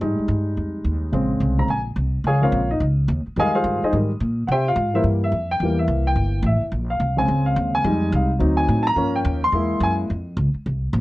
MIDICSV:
0, 0, Header, 1, 4, 480
1, 0, Start_track
1, 0, Key_signature, -4, "minor"
1, 0, Tempo, 280243
1, 15, Time_signature, 4, 2, 24, 8
1, 18853, End_track
2, 0, Start_track
2, 0, Title_t, "Grand piano"
2, 0, Program_c, 0, 0
2, 10, Note_on_c, 0, 55, 49
2, 17, Note_on_c, 0, 56, 49
2, 26, Note_on_c, 0, 63, 61
2, 1862, Note_off_c, 0, 55, 0
2, 1865, Note_off_c, 0, 56, 0
2, 1870, Note_off_c, 0, 63, 0
2, 1922, Note_on_c, 0, 49, 50
2, 1941, Note_on_c, 0, 56, 49
2, 1955, Note_on_c, 0, 60, 55
2, 2684, Note_off_c, 0, 49, 0
2, 2695, Note_off_c, 0, 56, 0
2, 2702, Note_off_c, 0, 60, 0
2, 2710, Note_on_c, 0, 49, 37
2, 2721, Note_on_c, 0, 56, 33
2, 2727, Note_on_c, 0, 82, 72
2, 2728, Note_on_c, 0, 60, 46
2, 2874, Note_off_c, 0, 49, 0
2, 2880, Note_off_c, 0, 56, 0
2, 2884, Note_off_c, 0, 60, 0
2, 2895, Note_off_c, 0, 82, 0
2, 2919, Note_on_c, 0, 80, 75
2, 3089, Note_off_c, 0, 80, 0
2, 3883, Note_on_c, 0, 80, 76
2, 3890, Note_on_c, 0, 77, 62
2, 3893, Note_on_c, 0, 73, 61
2, 3899, Note_on_c, 0, 68, 64
2, 4133, Note_off_c, 0, 73, 0
2, 4135, Note_off_c, 0, 77, 0
2, 4139, Note_on_c, 0, 49, 51
2, 4144, Note_on_c, 0, 56, 43
2, 4156, Note_off_c, 0, 80, 0
2, 4159, Note_on_c, 0, 73, 67
2, 4160, Note_on_c, 0, 77, 77
2, 4161, Note_on_c, 0, 60, 55
2, 4165, Note_off_c, 0, 68, 0
2, 4167, Note_on_c, 0, 70, 61
2, 4168, Note_on_c, 0, 65, 60
2, 4430, Note_off_c, 0, 49, 0
2, 4432, Note_off_c, 0, 56, 0
2, 4441, Note_off_c, 0, 60, 0
2, 4600, Note_off_c, 0, 73, 0
2, 4601, Note_off_c, 0, 77, 0
2, 4604, Note_off_c, 0, 70, 0
2, 4605, Note_off_c, 0, 65, 0
2, 4638, Note_on_c, 0, 75, 68
2, 4646, Note_on_c, 0, 63, 60
2, 4810, Note_off_c, 0, 75, 0
2, 4814, Note_off_c, 0, 63, 0
2, 5775, Note_on_c, 0, 51, 55
2, 5777, Note_on_c, 0, 55, 50
2, 5803, Note_on_c, 0, 56, 59
2, 5813, Note_on_c, 0, 80, 96
2, 5814, Note_on_c, 0, 75, 79
2, 5819, Note_on_c, 0, 77, 75
2, 5821, Note_on_c, 0, 68, 68
2, 6055, Note_off_c, 0, 77, 0
2, 6069, Note_off_c, 0, 68, 0
2, 6080, Note_on_c, 0, 77, 81
2, 6081, Note_off_c, 0, 75, 0
2, 6081, Note_off_c, 0, 80, 0
2, 6086, Note_on_c, 0, 72, 68
2, 6090, Note_on_c, 0, 65, 65
2, 6094, Note_on_c, 0, 68, 61
2, 6512, Note_off_c, 0, 51, 0
2, 6512, Note_off_c, 0, 55, 0
2, 6521, Note_off_c, 0, 77, 0
2, 6524, Note_off_c, 0, 72, 0
2, 6526, Note_off_c, 0, 56, 0
2, 6526, Note_off_c, 0, 65, 0
2, 6528, Note_off_c, 0, 68, 0
2, 6578, Note_on_c, 0, 72, 62
2, 6580, Note_on_c, 0, 75, 69
2, 6587, Note_on_c, 0, 63, 62
2, 6589, Note_on_c, 0, 68, 62
2, 6738, Note_on_c, 0, 51, 47
2, 6740, Note_off_c, 0, 72, 0
2, 6741, Note_off_c, 0, 75, 0
2, 6745, Note_off_c, 0, 63, 0
2, 6746, Note_off_c, 0, 68, 0
2, 6749, Note_on_c, 0, 55, 45
2, 6758, Note_on_c, 0, 56, 51
2, 7002, Note_off_c, 0, 51, 0
2, 7008, Note_off_c, 0, 55, 0
2, 7013, Note_off_c, 0, 56, 0
2, 7660, Note_on_c, 0, 78, 59
2, 7695, Note_off_c, 0, 78, 0
2, 7728, Note_on_c, 0, 76, 71
2, 7733, Note_on_c, 0, 79, 94
2, 7737, Note_on_c, 0, 67, 70
2, 7738, Note_on_c, 0, 72, 76
2, 7999, Note_off_c, 0, 76, 0
2, 8001, Note_off_c, 0, 79, 0
2, 8003, Note_off_c, 0, 67, 0
2, 8004, Note_off_c, 0, 72, 0
2, 8017, Note_on_c, 0, 77, 84
2, 8020, Note_on_c, 0, 65, 60
2, 8450, Note_off_c, 0, 77, 0
2, 8452, Note_off_c, 0, 65, 0
2, 8458, Note_on_c, 0, 52, 43
2, 8463, Note_on_c, 0, 55, 45
2, 8471, Note_on_c, 0, 58, 53
2, 8478, Note_on_c, 0, 76, 76
2, 8483, Note_on_c, 0, 64, 61
2, 8485, Note_on_c, 0, 70, 60
2, 8490, Note_on_c, 0, 72, 63
2, 8585, Note_off_c, 0, 76, 0
2, 8588, Note_off_c, 0, 64, 0
2, 8590, Note_off_c, 0, 70, 0
2, 8593, Note_off_c, 0, 72, 0
2, 8971, Note_on_c, 0, 76, 77
2, 9092, Note_off_c, 0, 52, 0
2, 9095, Note_off_c, 0, 55, 0
2, 9099, Note_off_c, 0, 58, 0
2, 9407, Note_off_c, 0, 76, 0
2, 9444, Note_on_c, 0, 79, 86
2, 9637, Note_on_c, 0, 52, 54
2, 9639, Note_on_c, 0, 55, 48
2, 9658, Note_on_c, 0, 58, 60
2, 9884, Note_off_c, 0, 79, 0
2, 9897, Note_off_c, 0, 55, 0
2, 9917, Note_on_c, 0, 76, 67
2, 10360, Note_off_c, 0, 76, 0
2, 10400, Note_on_c, 0, 79, 80
2, 11011, Note_off_c, 0, 79, 0
2, 11073, Note_on_c, 0, 76, 73
2, 11352, Note_off_c, 0, 76, 0
2, 11477, Note_off_c, 0, 52, 0
2, 11488, Note_off_c, 0, 58, 0
2, 11822, Note_on_c, 0, 77, 73
2, 12273, Note_off_c, 0, 77, 0
2, 12278, Note_on_c, 0, 49, 48
2, 12283, Note_on_c, 0, 56, 44
2, 12300, Note_on_c, 0, 60, 51
2, 12304, Note_on_c, 0, 80, 83
2, 12754, Note_off_c, 0, 80, 0
2, 12778, Note_on_c, 0, 77, 70
2, 13231, Note_off_c, 0, 77, 0
2, 13271, Note_on_c, 0, 80, 92
2, 13380, Note_off_c, 0, 49, 0
2, 13382, Note_off_c, 0, 56, 0
2, 13391, Note_off_c, 0, 60, 0
2, 13442, Note_on_c, 0, 55, 53
2, 13450, Note_on_c, 0, 56, 51
2, 13466, Note_on_c, 0, 63, 62
2, 13888, Note_off_c, 0, 80, 0
2, 13965, Note_on_c, 0, 77, 66
2, 14187, Note_off_c, 0, 55, 0
2, 14192, Note_off_c, 0, 56, 0
2, 14200, Note_off_c, 0, 63, 0
2, 14239, Note_off_c, 0, 77, 0
2, 14371, Note_on_c, 0, 54, 55
2, 14383, Note_on_c, 0, 60, 46
2, 14394, Note_on_c, 0, 63, 59
2, 14680, Note_on_c, 0, 80, 85
2, 15119, Note_on_c, 0, 81, 77
2, 15132, Note_off_c, 0, 54, 0
2, 15138, Note_off_c, 0, 60, 0
2, 15142, Note_off_c, 0, 80, 0
2, 15143, Note_off_c, 0, 63, 0
2, 15152, Note_off_c, 0, 81, 0
2, 15191, Note_on_c, 0, 82, 99
2, 15346, Note_on_c, 0, 53, 56
2, 15359, Note_on_c, 0, 58, 54
2, 15368, Note_on_c, 0, 61, 65
2, 15639, Note_off_c, 0, 82, 0
2, 15683, Note_on_c, 0, 79, 72
2, 16099, Note_off_c, 0, 53, 0
2, 16106, Note_off_c, 0, 58, 0
2, 16111, Note_off_c, 0, 61, 0
2, 16125, Note_off_c, 0, 79, 0
2, 16173, Note_on_c, 0, 84, 102
2, 16328, Note_on_c, 0, 56, 52
2, 16348, Note_on_c, 0, 58, 50
2, 16362, Note_on_c, 0, 64, 64
2, 16780, Note_off_c, 0, 84, 0
2, 16845, Note_on_c, 0, 80, 86
2, 17015, Note_off_c, 0, 80, 0
2, 17244, Note_off_c, 0, 56, 0
2, 17255, Note_off_c, 0, 58, 0
2, 17262, Note_off_c, 0, 64, 0
2, 18853, End_track
3, 0, Start_track
3, 0, Title_t, "Upright bass"
3, 0, Program_c, 1, 32
3, 15, Note_on_c, 1, 44, 90
3, 292, Note_off_c, 1, 44, 0
3, 481, Note_on_c, 1, 43, 97
3, 953, Note_off_c, 1, 43, 0
3, 979, Note_on_c, 1, 41, 77
3, 1437, Note_off_c, 1, 41, 0
3, 1447, Note_on_c, 1, 39, 87
3, 1915, Note_off_c, 1, 39, 0
3, 1931, Note_on_c, 1, 34, 84
3, 2391, Note_off_c, 1, 34, 0
3, 2401, Note_on_c, 1, 36, 92
3, 2872, Note_off_c, 1, 36, 0
3, 2883, Note_on_c, 1, 34, 73
3, 3347, Note_off_c, 1, 34, 0
3, 3357, Note_on_c, 1, 36, 87
3, 3829, Note_off_c, 1, 36, 0
3, 3836, Note_on_c, 1, 37, 82
3, 4309, Note_off_c, 1, 37, 0
3, 4317, Note_on_c, 1, 34, 96
3, 4789, Note_off_c, 1, 34, 0
3, 4800, Note_on_c, 1, 37, 92
3, 5265, Note_off_c, 1, 37, 0
3, 5275, Note_on_c, 1, 39, 97
3, 5559, Note_off_c, 1, 39, 0
3, 5757, Note_on_c, 1, 41, 87
3, 6222, Note_off_c, 1, 41, 0
3, 6232, Note_on_c, 1, 43, 94
3, 6517, Note_off_c, 1, 43, 0
3, 6726, Note_on_c, 1, 44, 86
3, 7187, Note_off_c, 1, 44, 0
3, 7198, Note_on_c, 1, 46, 93
3, 7669, Note_off_c, 1, 46, 0
3, 7677, Note_on_c, 1, 48, 92
3, 8137, Note_off_c, 1, 48, 0
3, 8147, Note_on_c, 1, 44, 95
3, 8615, Note_off_c, 1, 44, 0
3, 8625, Note_on_c, 1, 43, 83
3, 9097, Note_off_c, 1, 43, 0
3, 9107, Note_on_c, 1, 41, 89
3, 9584, Note_off_c, 1, 41, 0
3, 9592, Note_on_c, 1, 40, 92
3, 10056, Note_off_c, 1, 40, 0
3, 10066, Note_on_c, 1, 36, 97
3, 10536, Note_off_c, 1, 36, 0
3, 10547, Note_on_c, 1, 31, 85
3, 10997, Note_off_c, 1, 31, 0
3, 11007, Note_on_c, 1, 33, 102
3, 11306, Note_off_c, 1, 33, 0
3, 11507, Note_on_c, 1, 34, 92
3, 11974, Note_off_c, 1, 34, 0
3, 11984, Note_on_c, 1, 36, 94
3, 12464, Note_off_c, 1, 36, 0
3, 12472, Note_on_c, 1, 37, 87
3, 12942, Note_off_c, 1, 37, 0
3, 12952, Note_on_c, 1, 39, 98
3, 13423, Note_off_c, 1, 39, 0
3, 13433, Note_on_c, 1, 41, 92
3, 13905, Note_off_c, 1, 41, 0
3, 13915, Note_on_c, 1, 36, 98
3, 14382, Note_off_c, 1, 36, 0
3, 14393, Note_on_c, 1, 38, 90
3, 14864, Note_off_c, 1, 38, 0
3, 14874, Note_on_c, 1, 45, 99
3, 15336, Note_off_c, 1, 45, 0
3, 15346, Note_on_c, 1, 43, 88
3, 15826, Note_off_c, 1, 43, 0
3, 15839, Note_on_c, 1, 39, 105
3, 16300, Note_off_c, 1, 39, 0
3, 16310, Note_on_c, 1, 40, 86
3, 16781, Note_off_c, 1, 40, 0
3, 16792, Note_on_c, 1, 42, 100
3, 17269, Note_off_c, 1, 42, 0
3, 17300, Note_on_c, 1, 41, 85
3, 17749, Note_off_c, 1, 41, 0
3, 17760, Note_on_c, 1, 37, 102
3, 18045, Note_off_c, 1, 37, 0
3, 18260, Note_on_c, 1, 36, 85
3, 18714, Note_off_c, 1, 36, 0
3, 18724, Note_on_c, 1, 34, 103
3, 18853, Note_off_c, 1, 34, 0
3, 18853, End_track
4, 0, Start_track
4, 0, Title_t, "Muted upright bass strokes"
4, 318, Note_on_c, 9, 29, 39
4, 490, Note_off_c, 9, 29, 0
4, 5590, Note_on_c, 9, 29, 40
4, 5761, Note_off_c, 9, 29, 0
4, 6554, Note_on_c, 9, 29, 43
4, 6725, Note_off_c, 9, 29, 0
4, 11319, Note_on_c, 9, 29, 46
4, 11491, Note_off_c, 9, 29, 0
4, 18057, Note_on_c, 9, 29, 43
4, 18228, Note_off_c, 9, 29, 0
4, 18853, End_track
0, 0, End_of_file